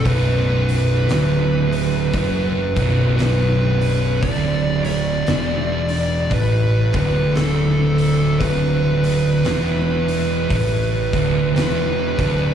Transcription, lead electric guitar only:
X:1
M:4/4
L:1/8
Q:"Swing" 1/4=57
K:D
V:1 name="Lead electric guitar"
B6 B2 | d d3 B B A2 | B6 B2 |]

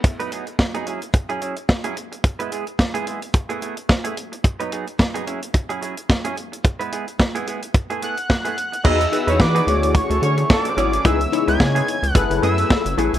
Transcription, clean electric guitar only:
X:1
M:4/4
L:1/16
Q:"Swing 16ths" 1/4=109
K:E
V:1 name="Clean electric guitar"
z [F,B,DB] [F,B,DG] z2 [F,B,DG] [F,CEG] z2 [F,CEG] [F,CEG] z2 [F,CEG] z2 | z [G,B,EB] [G,B,EG] z2 [G,B,EG] [G,B,EG] z2 [A,B,EG] [A,B,EG] z2 [A,B,EG] z2 | z [F,B,DB] [F,B,DG] z2 [F,B,DG] [F,CEG] z2 [F,CEG] [F,CEG] z2 [F,CEG] z2 | z [G,B,EB] [G,B,EG] z2 [G,B,EG] [G,B,EG] z2 [A,B,EG] [A,B,EG] z2 [A,B,EG] z2 |
[F,B,DG] z2 [F,B,DB] z [F,B,DG] z8 [F,CEG] [F,CEG] | [G,B,EG] z2 [G,B,EB] z [G,B,EG] z4 [A,B,EG] [A,B,EG] z2 [A,B,EG] [A,B,EG] |]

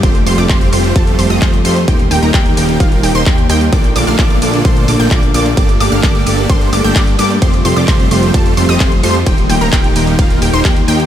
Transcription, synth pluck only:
X:1
M:4/4
L:1/16
Q:1/4=130
K:Fmix
V:1 name="Synth pluck"
c' z c' d' c'2 c'2 a2 c' e' c' z c' z | g z g b g2 g2 f2 g c' g z g z | d' z d' f' d'2 d'2 c'2 d' g' d' z d' z | d' z d' f' d'2 d'2 c'2 d' g' d' z d' z |
c' z c' d' c'2 c'2 a2 c' e' c' z c' z | g z g b g2 g2 f2 g c' g z g z |]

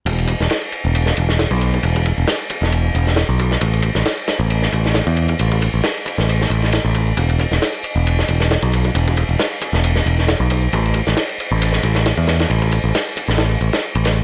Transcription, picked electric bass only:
X:1
M:4/4
L:1/16
Q:"Swing 16ths" 1/4=135
K:Ador
V:1 name="Picked electric bass" clef=bass
E,,,2 z E,,, z3 E,,,2 z E,,,2 z B,,,2 z | E,,,2 z E,,, z3 E,,,2 z E,,,2 z B,,,2 z | A,,,2 z A,,, z3 A,,,2 z A,,,2 z E,,2 z | A,,,2 z A,,, z3 A,,,2 z A,,,2 z A,,,2 z |
E,,,2 z E,,, z3 E,,,2 z E,,,2 z B,,,2 z | E,,,2 z E,,, z3 E,,,2 z E,,,2 z B,,,2 z | A,,,2 z A,,, z3 A,,,2 z A,,,2 z E,,2 z | A,,,2 z A,,, z3 A,,,2 z A,,, z2 A,,,2 z |]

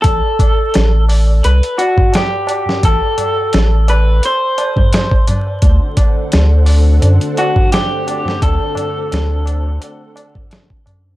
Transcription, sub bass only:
X:1
M:4/4
L:1/8
Q:"Swing 16ths" 1/4=86
K:Dmix
V:1 name="Sub bass" clef=bass
A,,, z A,,,2 C,, z3 | A,,, z A,,,2 z4 | D,, z D,,2 F,, z3 | D,, z D,,2 z3 F,, |]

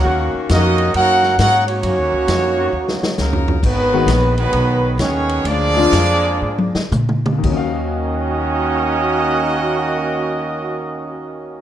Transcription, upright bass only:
X:1
M:4/4
L:1/8
Q:"Swing" 1/4=128
K:Ebm
V:1 name="Upright bass" clef=bass
E,, z F,,2 G,,2 A,,2 | (3G,, E,, D,, F,,2 E,, z D,,2 | A,,,2 B,,,2 C,,2 E,,2 | =D,,2 F,,2 A,, z B,,2 |
E,,8- | E,,8 |]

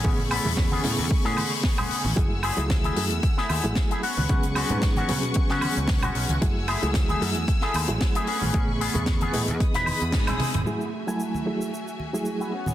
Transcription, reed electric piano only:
X:1
M:4/4
L:1/16
Q:"Swing 16ths" 1/4=113
K:F#dor
V:1 name="Reed electric piano"
[C,A,B,G]3 [C,A,B,G]3 [C,A,B,G]8- [C,A,B,G]2 | [F,A,EG]2 z [F,A,EG]3 [F,A,EG]2 z3 [F,A,EG]3 z2 | [F,B,CG]3 [F,B,CG]3 [F,B,CG]8- [F,B,CG]2 | [F,A,EG]2 z [F,A,EG]3 [F,A,EG]2 z3 [F,A,EG]3 z2 |
[C,A,B,G]3 [C,A,B,G]3 [E,B,Gd]8- [E,B,Gd]2 | [F,A,EG]2 z [F,A,Eg]3 [F,A,EG]2 z3 [F,A,EG]3 z2 |]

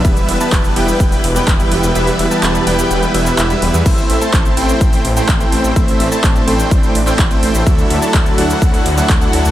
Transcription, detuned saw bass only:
X:1
M:4/4
L:1/16
Q:1/4=126
K:Am
V:1 name="Detuned saw bass" clef=bass
E,,, z E,,, z E,,, z E,,, z E,,, z E,,, z E,,, z E,,, E,,, | E,,, z E,,, z E,,, z E,,, z E,,, z E,,, z E,,, z E,,, E,, | A,,, z A,,, z A,,, z A,,, z A,,, z A,,, z A,,, z A,,, A,,, | A,,, z A,,, z A,,, z A,,, z A,,, z A,,, z A,,, z A,,, A,,, |
D,, z D,, z D,, z D,, z D,, z D,, z D,, z D,, D,, |]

